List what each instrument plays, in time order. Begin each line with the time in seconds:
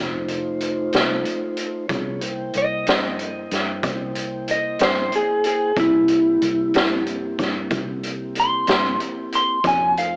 Already playing: fingered electric bass F1, tonewheel organ A3 D#4 F4 C5
0.28 closed hi-hat
0.61 closed hi-hat
0.93 fingered electric bass C2, snare, closed hi-hat
1.25 closed hi-hat
1.57 closed hi-hat
1.88 fingered electric bass C2, tonewheel organ B3 F4 G#4 C#5, kick, closed hi-hat
2.20 tonewheel organ A#3 E4 C5 G5, closed hi-hat
2.53 fingered electric bass C2, closed hi-hat
2.57 clean electric guitar D#5
2.86 fingered electric bass G2, snare, closed hi-hat
3.19 closed hi-hat
3.51 fingered electric bass G2, snare, closed hi-hat
3.83 fingered electric bass C2, kick, closed hi-hat
4.15 closed hi-hat
4.48 clean electric guitar D#5, closed hi-hat
4.79 fingered electric bass G2, snare, closed hi-hat
4.84 clean electric guitar C5
5.12 clean electric guitar G#4, closed hi-hat
5.44 clean electric guitar G#4, closed hi-hat
5.76 fingered electric bass C2, tonewheel organ A#3 C4 E4 G4, clean electric guitar E4, kick, closed hi-hat
6.08 closed hi-hat
6.42 fingered electric bass C2, closed hi-hat
6.74 fingered electric bass G2, snare, closed hi-hat
7.07 closed hi-hat
7.38 fingered electric bass G2, kick, snare, closed hi-hat
7.71 fingered electric bass C2, kick, closed hi-hat
8.03 closed hi-hat
8.35 closed hi-hat
8.40 clean electric guitar C6
8.67 fingered electric bass G2, snare, closed hi-hat
9.00 closed hi-hat
9.32 clean electric guitar C6, closed hi-hat
9.64 fingered electric bass F2, tonewheel organ A#3 E4 F#4 C#5, clean electric guitar G#5, kick, closed hi-hat
9.97 tonewheel organ A3 D#4 F4 C5, clean electric guitar F5, closed hi-hat